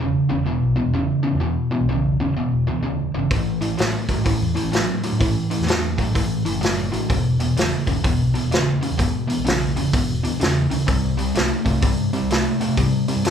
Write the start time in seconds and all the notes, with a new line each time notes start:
0.00 E1 E2 C#3
0.30 E1 E2 C#3
0.46 E2 B2
0.63 B1
0.76 E2 B2
0.87 E1
0.94 E2 C#3
1.23 E2 C#3
1.34 E2
1.40 E2 B2
1.71 E2 B2
1.81 B1
1.89 E2 C#3
2.20 E1 E2 C#3
2.37 E2 B2
2.52 E1
2.67 D2 E2 B2
2.83 E2 C#3
3.14 G1 E2 C#3
3.31 A1 A2 E3, kick, open hi-hat
3.61 A2 E3, open hi-hat
3.78 A1 A2 F#3, snare, open hi-hat
4.08 A1 A2 F#3, kick, open hi-hat
4.25 A2 E3, kick, open hi-hat
4.41 E2
4.55 A2 E3, open hi-hat
4.65 A1
4.72 A2 F#3, snare, open hi-hat
5.03 A2 F#3, open hi-hat
5.12 A2
5.20 A2 E3, kick, open hi-hat
5.50 A2 E3, open hi-hat
5.60 E2, snare
5.67 A2 F#3, snare, open hi-hat
5.98 A1 A2 F#3, kick, open hi-hat
6.15 A2 E3, kick, open hi-hat
6.30 A1
6.45 F#1 A2 E3, open hi-hat
6.61 A2 F#3, snare, open hi-hat
6.92 A1 A2 F#3, open hi-hat
7.09 E1 E2 B2, kick, open hi-hat
7.40 E2 B2, open hi-hat
7.57 E1 E2 C#3, snare, open hi-hat
7.87 E1 E2 C#3, kick, open hi-hat
8.04 E2 B2, kick, open hi-hat
8.20 B1
8.34 E2 B2, open hi-hat
8.44 E1
8.51 E2 C#3, snare, open hi-hat
8.81 E2 C#3, open hi-hat
8.91 E2
8.98 E2 B2, kick, open hi-hat
9.28 E2 B2, open hi-hat
9.38 B1
9.45 E2 C#3, snare, open hi-hat
9.76 E1 E2 C#3, open hi-hat
9.93 E2 B2, kick, open hi-hat
10.08 E1
10.24 D2 E2 B2, open hi-hat
10.40 E2 C#3, snare, open hi-hat
10.71 D2 E2 C#3, open hi-hat
10.87 C2 C3 G3, kick, open hi-hat
11.18 C3 G3, open hi-hat
11.35 C2 C3 A3, snare, open hi-hat
11.65 C2 C3 A3, kick, open hi-hat
11.82 C3 G3, kick, open hi-hat
11.98 G2
12.13 C3 G3, open hi-hat
12.22 C2
12.31 C3 A3, snare, open hi-hat
12.61 C3 A3, open hi-hat
12.69 C3
12.77 C3 G3, kick, open hi-hat
13.08 C3 G3, open hi-hat
13.16 G2
13.24 C3 A3, snare, open hi-hat